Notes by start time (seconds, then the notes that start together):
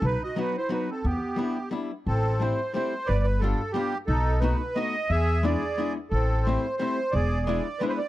0.02 B1 D#4 B4
0.23 F#4 D#5
0.36 F#3 B3 D#4 F#4 B4
0.40 D#4
0.57 E4 C5
0.69 F#3 B3 D#4 F#4 B4
0.90 C4 A4
1.05 E2 B3 G4
1.36 G3 B3 D4 E4
1.71 G3 B3 D4 E4
2.07 A1 C4 A4
2.40 G3 A3 C4 E4 C5
2.74 G3 A3 C4 E4 C5
3.06 G1 B4 D5
3.24 B4
3.39 G3 B3 D4 A4
3.44 F4
3.72 G3 B3 D4 F4 G4
4.07 B1 D#4 A4
4.40 A3 B3 D#4 F#4 B4
4.76 A3 B3 D#4 F#4 D#5
5.09 E2 G#4 E5
5.43 G#3 B3 D4 E4 G#4 D5
5.78 G#3 B3 D4 E4
6.10 A1 C4 A4
6.43 A3 C5
6.47 G3 C4 E4
6.77 G3 A3 C4 C5
6.82 E4
7.12 E1 G#4 D5
7.46 G#3 B3 D4 E4 D5
7.79 G#3 B3 D4 E4 B4
7.88 B4 C5
7.98 D5